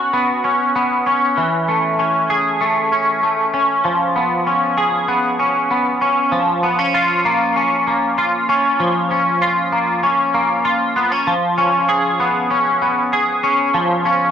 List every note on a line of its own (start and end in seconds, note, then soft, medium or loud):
0.00 0.12 B3 soft
0.00 0.44 C#4 medium
0.00 1.43 F#4 medium
0.13 0.74 B3 medium
0.44 1.06 C#4 soft
0.76 1.44 B3 medium
1.06 1.99 C#4 medium
1.37 3.84 E3 medium
1.68 2.60 A3 soft
1.99 2.92 C#4 medium
2.30 4.77 G#4 medium
2.61 3.22 A3 medium
2.92 3.53 C#4 medium
3.23 3.91 A3 medium
3.54 4.19 C#4 medium
3.85 6.31 F3 medium
4.16 5.07 B3 soft
4.47 5.39 C#4 soft
4.78 6.38 G#4 medium
5.08 5.69 B3 medium
5.39 6.01 C#4 soft
5.71 6.39 B3 soft
6.01 6.63 C#4 medium
6.32 8.79 F3 medium
6.63 6.79 B3 medium
6.79 7.55 C#4 soft
6.94 8.18 F4 medium
7.25 7.86 A#3 medium
7.56 8.49 C#4 medium
7.87 9.71 A#3 medium
8.18 9.41 F4 medium
8.49 9.10 C#4 medium
8.80 11.27 F3 medium
9.11 10.03 C#4 medium
9.42 10.64 F4 medium
9.72 10.33 A#3 medium
10.03 10.96 C#4 medium
10.34 11.33 A#3 medium
10.65 11.88 F4 medium
10.96 11.12 B3 medium
11.12 11.33 C#4 medium
11.27 13.73 F3 medium
11.58 12.49 C#4 medium
11.89 13.12 G#4 medium
12.20 12.81 B3 medium
12.51 13.42 C#4 medium
12.82 14.31 B3 soft
13.13 14.31 G#4 medium
13.43 14.04 C#4 medium
13.74 14.31 F3 medium
14.05 14.31 C#4 medium